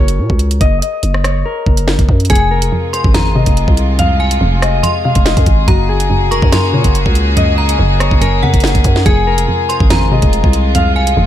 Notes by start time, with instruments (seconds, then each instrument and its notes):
Already playing: 808-style bass F#1, harp F#4 G#4 A#4 C#5 D#5
0.08 closed hi-hat
0.19 808-style bass A#2
0.30 808-style bass C#2, kick
0.39 closed hi-hat
0.51 closed hi-hat
0.61 808-style bass F#1, harp D#5, kick, closed hi-hat
0.82 harp D#5, closed hi-hat
1.03 808-style bass F#1, closed hi-hat
1.14 cross-stick
1.24 harp C#5, cross-stick, closed hi-hat
1.45 harp A#4
1.66 808-style bass F#1, kick
1.77 closed hi-hat
1.88 snare
1.99 808-style bass F#1, kick, closed hi-hat
2.09 808-style bass F#2, kick
2.20 closed hi-hat
2.25 closed hi-hat
2.30 808-style bass F1, synth pluck F2, string section C3 G#3 F4 G#4, harp G#4, synth bell G#5, kick, closed hi-hat
2.35 closed hi-hat
2.51 harp A#4
2.62 closed hi-hat
2.72 synth pluck F2
2.93 harp C5, synth bell C6, closed hi-hat
3.04 808-style bass G#1, kick
3.14 synth pluck F2, synth bell A#5, snare, closed hi-hat
3.35 synth pluck C3, harp D#5
3.46 808-style bass F1, kick, closed hi-hat
3.57 closed hi-hat
3.68 808-style bass C2, kick
3.77 closed hi-hat
3.99 synth pluck F2, harp F5, closed hi-hat
4.20 harp F5, synth bell G#5
4.31 closed hi-hat
4.41 808-style bass F1, synth pluck F2
4.62 harp D#5, cross-stick, closed hi-hat
4.83 synth pluck F2, synth bell C6, closed hi-hat
5.04 synth pluck C3, harp F5
5.15 808-style bass F1, kick, closed hi-hat
5.26 harp D#5, snare, closed hi-hat
5.37 808-style bass F2, kick, closed hi-hat
5.46 808-style bass G#1, kick, closed hi-hat
5.68 808-style bass F#1, synth pluck F#2, string section C#3 A#3 F#4, harp F#4, synth bell A#5, kick, closed hi-hat
5.89 harp G#4
6.00 closed hi-hat
6.10 synth pluck F#2
6.21 808-style bass F1
6.31 harp A#4, synth bell C#6, closed hi-hat
6.42 808-style bass F#2, kick
6.52 synth pluck F#2, synth bell C6, snare, closed hi-hat
6.73 808-style bass A#2, synth pluck C#3, harp C#5
6.84 808-style bass F#1, kick, closed hi-hat
6.95 closed hi-hat
7.06 808-style bass C#2, kick
7.15 closed hi-hat
7.37 synth pluck F#2, harp D#5, closed hi-hat
7.58 harp D#5, synth bell A#5
7.69 closed hi-hat
7.79 808-style bass F#1, synth pluck F#2
8.00 harp C#5, cross-stick, closed hi-hat
8.11 808-style bass F#1, kick
8.21 synth pluck F#2, harp A#4, synth bell G#5, closed hi-hat
8.42 808-style bass F#2, synth pluck C#3, synth bell F#5
8.54 808-style bass F#1, kick, closed hi-hat
8.60 snare, closed hi-hat
8.67 closed hi-hat
8.75 808-style bass F#1, kick, closed hi-hat
8.84 808-style bass F#2, kick, closed hi-hat
8.96 snare
9.06 808-style bass F1, synth pluck F2, string section C3 G#3 F4, harp G#4, synth bell G#5, kick, closed hi-hat
9.27 harp A#4
9.38 closed hi-hat
9.48 synth pluck F2
9.69 harp C5, synth bell C6, closed hi-hat
9.80 808-style bass G#1, kick
9.90 synth pluck F2, synth bell A#5, snare, closed hi-hat
10.11 synth pluck C3, harp D#5
10.22 808-style bass F1, kick, closed hi-hat
10.33 closed hi-hat
10.44 808-style bass C2, kick
10.53 closed hi-hat
10.75 synth pluck F2, harp F5, closed hi-hat
10.96 harp F5, synth bell G#5
11.07 closed hi-hat
11.17 808-style bass F1, synth pluck F2